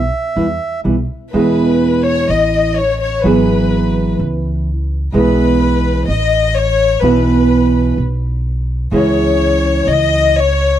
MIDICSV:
0, 0, Header, 1, 5, 480
1, 0, Start_track
1, 0, Key_signature, 4, "major"
1, 0, Tempo, 480000
1, 1339, Time_signature, 4, 2, 24, 8
1, 3244, Tempo, 473934
1, 10891, End_track
2, 0, Start_track
2, 0, Title_t, "Bandoneon"
2, 0, Program_c, 0, 23
2, 0, Note_on_c, 0, 76, 85
2, 806, Note_off_c, 0, 76, 0
2, 10891, End_track
3, 0, Start_track
3, 0, Title_t, "Violin section"
3, 0, Program_c, 1, 48
3, 1323, Note_on_c, 1, 71, 81
3, 2007, Note_off_c, 1, 71, 0
3, 2027, Note_on_c, 1, 73, 98
3, 2277, Note_on_c, 1, 75, 86
3, 2279, Note_off_c, 1, 73, 0
3, 2753, Note_on_c, 1, 73, 89
3, 2761, Note_off_c, 1, 75, 0
3, 2982, Note_off_c, 1, 73, 0
3, 2994, Note_on_c, 1, 73, 81
3, 3221, Note_off_c, 1, 73, 0
3, 3223, Note_on_c, 1, 71, 81
3, 4193, Note_off_c, 1, 71, 0
3, 5177, Note_on_c, 1, 71, 90
3, 6085, Note_off_c, 1, 71, 0
3, 6125, Note_on_c, 1, 75, 98
3, 6596, Note_on_c, 1, 73, 103
3, 6600, Note_off_c, 1, 75, 0
3, 7066, Note_on_c, 1, 71, 85
3, 7075, Note_off_c, 1, 73, 0
3, 8028, Note_off_c, 1, 71, 0
3, 9014, Note_on_c, 1, 73, 94
3, 9930, Note_off_c, 1, 73, 0
3, 9961, Note_on_c, 1, 75, 99
3, 10443, Note_off_c, 1, 75, 0
3, 10448, Note_on_c, 1, 73, 98
3, 10891, Note_off_c, 1, 73, 0
3, 10891, End_track
4, 0, Start_track
4, 0, Title_t, "Nylon-string guitar"
4, 0, Program_c, 2, 24
4, 355, Note_on_c, 2, 47, 59
4, 361, Note_on_c, 2, 52, 73
4, 361, Note_on_c, 2, 55, 70
4, 364, Note_on_c, 2, 59, 64
4, 364, Note_on_c, 2, 64, 71
4, 452, Note_off_c, 2, 47, 0
4, 455, Note_off_c, 2, 52, 0
4, 456, Note_off_c, 2, 55, 0
4, 457, Note_off_c, 2, 59, 0
4, 457, Note_off_c, 2, 64, 0
4, 837, Note_on_c, 2, 47, 57
4, 842, Note_on_c, 2, 52, 64
4, 848, Note_on_c, 2, 55, 62
4, 850, Note_on_c, 2, 59, 65
4, 851, Note_on_c, 2, 64, 69
4, 938, Note_off_c, 2, 47, 0
4, 941, Note_off_c, 2, 52, 0
4, 944, Note_off_c, 2, 55, 0
4, 944, Note_off_c, 2, 59, 0
4, 945, Note_off_c, 2, 64, 0
4, 1330, Note_on_c, 2, 47, 84
4, 1336, Note_on_c, 2, 52, 84
4, 1339, Note_on_c, 2, 56, 81
4, 1351, Note_on_c, 2, 59, 72
4, 1354, Note_on_c, 2, 64, 83
4, 2279, Note_off_c, 2, 47, 0
4, 2283, Note_off_c, 2, 56, 0
4, 2289, Note_off_c, 2, 59, 0
4, 2790, Note_off_c, 2, 52, 0
4, 2790, Note_off_c, 2, 64, 0
4, 3232, Note_on_c, 2, 52, 73
4, 3239, Note_on_c, 2, 54, 80
4, 3250, Note_on_c, 2, 59, 87
4, 3251, Note_on_c, 2, 66, 84
4, 3256, Note_on_c, 2, 68, 86
4, 4192, Note_off_c, 2, 54, 0
4, 4198, Note_off_c, 2, 59, 0
4, 4198, Note_off_c, 2, 66, 0
4, 4201, Note_off_c, 2, 68, 0
4, 4707, Note_off_c, 2, 52, 0
4, 5147, Note_on_c, 2, 47, 86
4, 5155, Note_on_c, 2, 52, 81
4, 5162, Note_on_c, 2, 56, 86
4, 5169, Note_on_c, 2, 59, 91
4, 5176, Note_on_c, 2, 64, 77
4, 6101, Note_off_c, 2, 47, 0
4, 6105, Note_off_c, 2, 52, 0
4, 6108, Note_off_c, 2, 56, 0
4, 6112, Note_off_c, 2, 59, 0
4, 6115, Note_off_c, 2, 64, 0
4, 7060, Note_on_c, 2, 47, 83
4, 7072, Note_on_c, 2, 52, 83
4, 7079, Note_on_c, 2, 59, 80
4, 7084, Note_on_c, 2, 64, 84
4, 7088, Note_on_c, 2, 66, 85
4, 8015, Note_off_c, 2, 47, 0
4, 8021, Note_off_c, 2, 52, 0
4, 8025, Note_off_c, 2, 59, 0
4, 8028, Note_off_c, 2, 64, 0
4, 8030, Note_off_c, 2, 66, 0
4, 8986, Note_on_c, 2, 49, 84
4, 8996, Note_on_c, 2, 56, 87
4, 8998, Note_on_c, 2, 52, 73
4, 9009, Note_on_c, 2, 61, 88
4, 9010, Note_on_c, 2, 64, 88
4, 9948, Note_off_c, 2, 49, 0
4, 9952, Note_off_c, 2, 56, 0
4, 9959, Note_off_c, 2, 61, 0
4, 10466, Note_off_c, 2, 52, 0
4, 10466, Note_off_c, 2, 64, 0
4, 10891, End_track
5, 0, Start_track
5, 0, Title_t, "Upright bass"
5, 0, Program_c, 3, 32
5, 364, Note_on_c, 3, 40, 68
5, 569, Note_off_c, 3, 40, 0
5, 849, Note_on_c, 3, 35, 74
5, 1057, Note_off_c, 3, 35, 0
5, 1341, Note_on_c, 3, 40, 71
5, 2246, Note_off_c, 3, 40, 0
5, 2290, Note_on_c, 3, 33, 72
5, 3196, Note_off_c, 3, 33, 0
5, 3240, Note_on_c, 3, 32, 69
5, 4155, Note_off_c, 3, 32, 0
5, 4205, Note_on_c, 3, 37, 77
5, 5116, Note_off_c, 3, 37, 0
5, 5166, Note_on_c, 3, 35, 73
5, 6072, Note_off_c, 3, 35, 0
5, 6123, Note_on_c, 3, 33, 77
5, 7029, Note_off_c, 3, 33, 0
5, 7073, Note_on_c, 3, 35, 77
5, 7984, Note_off_c, 3, 35, 0
5, 8036, Note_on_c, 3, 35, 72
5, 8951, Note_off_c, 3, 35, 0
5, 8992, Note_on_c, 3, 37, 77
5, 9912, Note_off_c, 3, 37, 0
5, 9952, Note_on_c, 3, 37, 77
5, 10870, Note_off_c, 3, 37, 0
5, 10891, End_track
0, 0, End_of_file